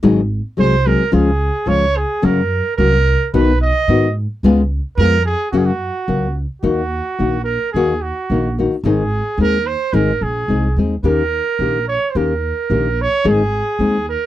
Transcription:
<<
  \new Staff \with { instrumentName = "Trumpet" } { \time 2/4 \key fis \major \tempo 4 = 109 r4 bis'8 ais'8 | gis'4 cis''8 gis'8 | ais'4 ais'4 | b'8 dis''4 r8 |
r4 ais'8 gis'8 | fis'32 gis'32 fis'4~ fis'16 r8 | \key ees \dorian ges'4. bes'8 | aes'8 ges'4 r8 |
aes'4 bes'8 c''8 | bes'8 aes'4 r8 | bes'4. des''16. c''32 | bes'4. des''8 |
aes'4. bes'8 | }
  \new Staff \with { instrumentName = "Nylon-string guitar" } { \time 2/4 \key fis \major <gis, dis fis gis bis gis'>8 r8 <fis gis bis gis'>8 <fis gis bis gis'>8 | <cis eis gis cis' eis'>8 r8 <eis gis cis' eis'>8 r8 | <fis, cis fis ais cis' fis'>8 r8 <fis ais cis' fis'>8 r8 | <b, dis b dis' fis'>8 r8 <dis b dis' fis'>8 r8 |
<cis gis b eis' gis'>8 r8 <gis b eis' gis'>8 r8 | <fis, cis fis ais cis' fis'>8 r8 <fis ais cis' fis'>8 r8 | \key ees \dorian <ees bes ees' ges'>8 r8 <ees bes ees' ges'>8 r8 | <ees bes ees' ges'>8 r8 <ees bes ees' ges'>8 <ees bes ees' ges'>8 |
<aes, ees aes c' ees' aes'>8 r8 <aes c' ees' aes'>8 r8 | <aes, ees aes c' ees' aes'>8 r8 <aes c' ees' aes'>8 <aes c' ees' aes'>8 | <ees bes des' g'>8 r8 <ees bes des' g'>8 r8 | <ees bes des' g'>8 r8 <ees bes des' g'>8 r8 |
<aes, ees aes c' ees' aes'>8 r8 <aes c' ees' aes'>8 r8 | }
  \new Staff \with { instrumentName = "Upright bass" } { \clef bass \time 2/4 \key fis \major gis,,4 bis,,4 | cis,4 cis,4 | fis,4 bis,,4 | b,,4 gis,4 |
cis,4 eis,4 | fis,4 cis,4 | \key ees \dorian ees,4 bes,,4 | ees,4 bes,,4 |
aes,,4 ees,4 | aes,,8 bes,,8 c,8 ees,8 | ees,4 bes,,4 | ees,4 bes,,4 |
aes,,4 ees,4 | }
>>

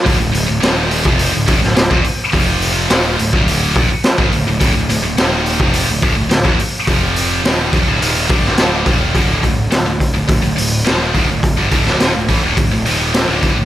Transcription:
<<
  \new Staff \with { instrumentName = "Distorted electric guitar" } { \clef bass \time 4/4 \key d \minor \tempo 4 = 106 <d, a,>16 <d, a,>16 <d, a,>16 <d, a,>16 <ees, bes, ees>8. <f, c f>8 <d, a,>16 <d, a,>16 <d, a,>16 <d, a,>16 <ees, bes,>16 r8 | <f, c f>4 <ees, bes, ees>8 <d, a,>16 <d, a, d>8. <ees, bes,>16 r8 <gis, ees>16 <d, a,>16 <d, a,>16 | <d, a,>16 <d, a,>16 <d, a,>16 <d, a,>16 <ees, bes, ees>8. <f, c f>8 <d, a,>16 <d, a,>16 <d, a,>16 <d, a,>16 <ees, bes,>16 r8 | <f, c f>4 <ees, bes, ees>8 <ees, bes,>16 <d, a,>16 <ees, bes, ees>8 <g, d g>8 <d, a, d>8 <ees, bes, ees>8 |
<d, a, d>8 <d, a,>8 <d, a,>16 <d, a,>8 <d, a,>16 <d, a,>16 <d, a,>16 <d, a,>8 <ees, bes, ees>8 <d, a,>16 <d, a,>16~ | <d, a,>16 <g, d>16 <d, a, d>8 <ees, bes,>16 <d, a,>16 <a, e>16 <d, a,>16 <d, a,>16 <d, a,>16 <ees, bes, ees>8. <d, a, d>8 <d, a,>16 | }
  \new Staff \with { instrumentName = "Picked electric bass" } { \clef bass \time 4/4 \key d \minor d,,16 d,,16 d,,16 d,,16 ees,,8. f,,8 d,,16 d,,16 d,,16 d,,16 ees,,16 r8 | f,,4 ees,,8 d,,16 d,,8. ees,,16 r8 gis,,16 d,,16 d,,16 | d,,16 d,,16 d,,16 d,,16 ees,,8. f,,8 d,,16 d,,16 d,,16 d,,16 ees,,16 r8 | f,,4 ees,,8 ees,,16 d,,16 ees,,8 g,,8 d,,8 ees,,8 |
d,,8 d,,8 d,,16 d,,8 d,,16 d,,16 d,,16 d,,8 ees,,8 d,,16 d,,16~ | d,,16 g,,16 d,,8 ees,,16 d,,16 a,,16 d,,16 d,,16 d,,16 ees,,8. d,,8 d,,16 | }
  \new DrumStaff \with { instrumentName = "Drums" } \drummode { \time 4/4 <hho bd>8 hho8 <hho sn>8 hho16 bd16 hho8 <hho bd>16 sn16 <hho sn>16 bd16 hho8 | <hho bd>8 hho8 <hho sn>8 hho16 bd16 hho8 <hho bd>8 <hho sn>16 bd16 hho8 | <hho bd>8 hho8 <hho sn>8 hho16 bd16 hho8 <hho bd>8 <hho sn>16 bd16 hho8 | <hho bd>8 hho8 <hho sn>8 <hho bd>8 hho8 <hho bd>16 sn16 <hho sn>8 <hho bd>8 |
<hho bd>8 <hho bd>8 <hho sn>8 <hho bd>8 <hho bd>8 hho8 <hho sn>8 <hho bd>8 | <hho bd>8 <hho bd>16 sn16 <hho sn>8 <hho bd>8 <hho bd>8 hho8 <hho sn>8 <hho bd>8 | }
>>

